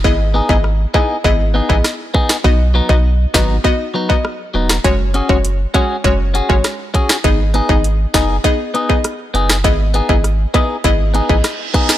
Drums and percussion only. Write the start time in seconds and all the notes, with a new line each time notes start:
0.04 kick
0.49 kick
0.64 cross-stick
0.94 kick
1.24 kick
1.70 kick
1.84 cross-stick, snare
2.14 kick
2.29 cross-stick, snare
2.44 kick
2.89 kick
3.34 kick, cross-stick, snare
3.64 kick
4.10 kick
4.25 cross-stick
4.69 cross-stick, snare
4.84 kick, closed hi-hat
5.14 closed hi-hat
5.29 kick
5.45 closed hi-hat
5.74 kick, closed hi-hat
6.04 kick, closed hi-hat
6.35 closed hi-hat
6.50 kick
6.64 cross-stick, snare, closed hi-hat
6.94 kick, closed hi-hat
7.09 cross-stick, snare
7.24 kick, closed hi-hat
7.54 closed hi-hat
7.69 kick
7.84 closed hi-hat
8.14 kick, cross-stick, snare, closed hi-hat
8.44 kick, closed hi-hat
8.75 closed hi-hat
8.90 kick
9.04 cross-stick, closed hi-hat
9.35 closed hi-hat
9.49 cross-stick, snare
9.64 kick, closed hi-hat
9.94 closed hi-hat
10.09 kick
10.24 cross-stick, closed hi-hat
10.54 kick, closed hi-hat
10.84 kick, closed hi-hat
11.14 closed hi-hat
11.29 kick
11.44 cross-stick, snare, closed hi-hat
11.74 kick, closed hi-hat
11.89 cross-stick, snare